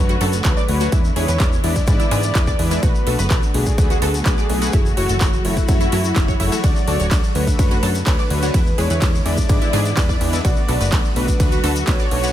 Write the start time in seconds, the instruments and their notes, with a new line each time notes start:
Already playing: analog synth bass F#2, string section C#3 D3 F#3 A3 F#4, supersaw synth A3 D4 F#4 C#5, analog synth lead B4, impact
0.09 synth pluck F#4 F#5, closed hi-hat, shaker
0.21 analog synth bass F#2, supersaw synth A3 D4 F#4 C#5, synth pluck A4 A5, open hi-hat
0.33 closed hi-hat, shaker
0.45 analog synth bass D2, supersaw synth A3 D4 F#4 C#5, analog synth lead B4, synth pluck C#5 C#6, kick, clap, closed hi-hat, shaker
0.57 synth pluck D5 D6, shaker
0.69 analog synth bass D2, supersaw synth A3 D4 F#4 C#5, open hi-hat
0.81 supersaw synth A3 D4 F#4 C#5, synth pluck F#4 F#5, closed hi-hat, shaker
0.92 analog synth bass E2, string section E3 G#3 B3 E4, supersaw synth G#3 E4 B4, synth pluck E4 E5, kick, closed hi-hat, shaker
1.05 shaker
1.16 analog synth bass E2, supersaw synth G#3 D4 E4 B4, synth pluck G#4 G#5, analog synth lead C#5, open hi-hat
1.28 analog synth bass E2, synth pluck B4 B5, closed hi-hat, shaker
1.40 analog synth bass E2, supersaw synth G#3 D4 E4 B4, synth pluck D5 D6, kick, clap, closed hi-hat, shaker
1.53 shaker
1.64 analog synth bass E2, supersaw synth G#3 D4 E4 B4, analog synth lead D5, open hi-hat
1.76 supersaw synth G#3 D4 E4 D5, kick, closed hi-hat, shaker
1.87 analog synth bass G#2, supersaw synth G#3 D4 E4 B4, kick, closed hi-hat, shaker
2.00 synth pluck E4 E5, closed hi-hat, shaker
2.11 analog synth bass G#2, supersaw synth G#3 D4 E4 B4, synth pluck G#4 G#5, open hi-hat
2.23 closed hi-hat, shaker
2.35 analog synth bass E2, supersaw synth G#3 D4 E4 B4, synth pluck B4 B5, kick, clap, closed hi-hat, shaker
2.47 synth pluck D5 D6, kick, shaker
2.59 analog synth bass E2, supersaw synth G#3 D4 E4 B4, open hi-hat
2.71 supersaw synth G#3 D4 E4 B4, synth pluck E4 E5, closed hi-hat, shaker
2.83 analog synth bass B1, string section D3 F#3 A3 F#4, supersaw synth A3 D4 F#4 B4, synth pluck F#4 F#5, analog synth lead B4, kick, closed hi-hat, shaker
2.95 shaker
3.07 analog synth bass B1, supersaw synth A3 D4 F#4 B4, synth pluck A4 A5, open hi-hat
3.19 analog synth bass F#1, synth pluck B4 B5, closed hi-hat, shaker
3.30 analog synth bass B1, supersaw synth A3 D4 F#4 B4, synth pluck D5 D6, kick, clap, closed hi-hat, shaker
3.43 shaker
3.54 analog synth bass B1, supersaw synth A3 D4 F#4 B4, analog synth lead G#4, open hi-hat
3.66 supersaw synth A3 D4 F#4 D5, kick, closed hi-hat, shaker
3.78 analog synth bass D2, supersaw synth A3 D4 F#4 B4, kick, closed hi-hat, shaker
3.90 synth pluck F#4 F#5, closed hi-hat, shaker
4.02 analog synth bass D2, supersaw synth A3 D4 F#4 B4, synth pluck A4 A5, open hi-hat
4.14 closed hi-hat, shaker
4.26 analog synth bass B1, supersaw synth A3 D4 F#4 B4, analog synth lead G#4, synth pluck B4 B5, kick, clap, closed hi-hat, shaker
4.38 synth pluck D5 D6, shaker
4.50 analog synth bass B1, supersaw synth A3 D4 F#4 B4, open hi-hat
4.62 supersaw synth A3 D4 F#4 B4, synth pluck F#4 F#5, closed hi-hat, shaker
4.72 analog synth bass F#1, string section C#3 E3, supersaw synth A3 E4 F#4 C#5, synth pluck E4 E5, kick, closed hi-hat, shaker
4.86 shaker
4.97 analog synth bass F#1, supersaw synth A3 E4 F#4 C#5, synth pluck F#4 F#5, analog synth lead F#4, open hi-hat
5.09 analog synth bass F#1, synth pluck A4 A5, closed hi-hat, shaker
5.21 analog synth bass F#1, supersaw synth A3 E4 F#4 C#5, synth pluck C#5 C#6, kick, clap, closed hi-hat, shaker
5.33 shaker
5.45 analog synth bass F#1, supersaw synth A3 E4 F#4 C#5, analog synth lead E4, open hi-hat
5.57 supersaw synth A3 E4 F#4 F#5, kick, closed hi-hat, shaker
5.68 analog synth bass F#2, supersaw synth A3 E4 F#4 C#5, kick, closed hi-hat, shaker
5.81 synth pluck E4 E5, closed hi-hat, shaker
5.92 analog synth bass F#2, supersaw synth A3 E4 F#4 C#5, synth pluck E4 E5, open hi-hat
6.04 closed hi-hat, shaker
6.16 analog synth bass F#1, supersaw synth A3 E4 F#4 C#5, synth pluck E5 E6, kick, clap, closed hi-hat, shaker
6.28 synth pluck C#5 C#6, kick, shaker
6.40 analog synth bass F#1, supersaw synth A3 E4 F#4 C#5, synth pluck E4 E5, open hi-hat
6.52 supersaw synth A3 E4 F#4 C#5, synth pluck E5 E6, closed hi-hat, shaker
6.64 analog synth bass D2, string section D3 A3, supersaw synth A3 D4 F#4 C#5, synth pluck F#4 F#5, analog synth lead D5, kick, closed hi-hat, ride, shaker
6.76 shaker
6.87 analog synth bass D2, supersaw synth A3 D4 F#4 C#5, synth pluck A4 A5, open hi-hat
7.00 analog synth bass D1, synth pluck C#5 C#6, closed hi-hat, shaker
7.11 analog synth bass D2, supersaw synth A3 D4 F#4 C#5, synth pluck D5 D6, kick, clap, closed hi-hat, ride, shaker
7.23 shaker
7.35 analog synth bass D2, supersaw synth A3 D4 F#4 C#5, analog synth lead B4, open hi-hat
7.47 supersaw synth A3 D4 F#4 E5, kick, closed hi-hat, shaker
7.59 analog synth bass F#2, supersaw synth A3 D4 F#4 C#5, kick, closed hi-hat, ride, shaker
7.71 synth pluck F#4 F#5, closed hi-hat, shaker
7.83 analog synth bass F#2, supersaw synth A3 D4 F#4 C#5, synth pluck A4 A5, open hi-hat
7.95 closed hi-hat, shaker
8.06 analog synth bass D2, supersaw synth A3 D4 F#4 C#5, analog synth lead B4, synth pluck C#5 C#6, kick, clap, closed hi-hat, ride, shaker
8.19 synth pluck D5 D6, shaker
8.30 analog synth bass D2, supersaw synth A3 D4 F#4 C#5, open hi-hat
8.43 supersaw synth A3 D4 F#4 C#5, synth pluck F#4 F#5, closed hi-hat, shaker
8.54 analog synth bass E2, string section E3 G#3 B3 E4, supersaw synth G#3 D4 E4 B4, synth pluck E4 E5, kick, closed hi-hat, ride, shaker
8.66 shaker
8.78 analog synth bass E2, supersaw synth G#3 D4 E4 B4, synth pluck G#4 G#5, analog synth lead C#5, open hi-hat
8.90 analog synth bass E2, synth pluck B4 B5, closed hi-hat, shaker
9.01 analog synth bass E2, supersaw synth G#3 D4 E4 B4, synth pluck D5 D6, kick, clap, closed hi-hat, ride, shaker
9.15 shaker
9.26 analog synth bass E2, supersaw synth G#3 D4 E4 B4, analog synth lead D5, open hi-hat
9.37 supersaw synth G#3 D4 E4 D5, kick, closed hi-hat, shaker
9.49 analog synth bass G#2, supersaw synth G#3 D4 E4 B4, kick, closed hi-hat, ride, shaker
9.62 synth pluck E4 E5, closed hi-hat, shaker
9.73 analog synth bass G#2, supersaw synth G#3 D4 E4 B4, synth pluck G#4 G#5, open hi-hat
9.85 closed hi-hat, shaker
9.97 analog synth bass E2, supersaw synth G#3 D4 E4 B4, synth pluck B4 B5, kick, clap, closed hi-hat, ride, shaker
10.09 synth pluck D5 D6, kick, shaker
10.21 analog synth bass E2, supersaw synth G#3 D4 E4 B4, open hi-hat
10.33 supersaw synth G#3 D4 E4 B4, synth pluck E4 E5, closed hi-hat, shaker
10.45 analog synth bass B1, string section F#3 A3 F#4, supersaw synth A3 F#4 B4, synth pluck F#4 F#5, analog synth lead D5, kick, closed hi-hat, ride, shaker
10.56 shaker
10.68 analog synth bass B1, supersaw synth A3 D4 F#4 B4, synth pluck A4 A5, open hi-hat
10.81 analog synth bass F#1, synth pluck B4 B5, closed hi-hat, shaker
10.92 analog synth bass B1, supersaw synth A3 D4 F#4 B4, synth pluck D5 D6, kick, clap, closed hi-hat, ride, shaker
11.05 shaker
11.16 analog synth bass B1, supersaw synth A3 D4 F#4 B4, analog synth lead B4, open hi-hat
11.28 supersaw synth A3 D4 F#4 D5, kick, closed hi-hat, shaker
11.40 analog synth bass D2, supersaw synth A3 D4 F#4 B4, kick, closed hi-hat, ride, shaker
11.52 synth pluck F#4 F#5, closed hi-hat, shaker
11.64 analog synth bass D2, supersaw synth A3 D4 F#4 B4, synth pluck A4 A5, open hi-hat
11.76 closed hi-hat, shaker
11.87 analog synth bass B1, supersaw synth A3 D4 F#4 B4, synth pluck B4 B5, analog synth lead C#5, kick, clap, closed hi-hat, ride, shaker
11.99 synth pluck D5 D6, shaker
12.11 analog synth bass B1, supersaw synth A3 D4 F#4 B4, open hi-hat
12.23 supersaw synth A3 D4 F#4 B4, synth pluck F#4 F#5, closed hi-hat, shaker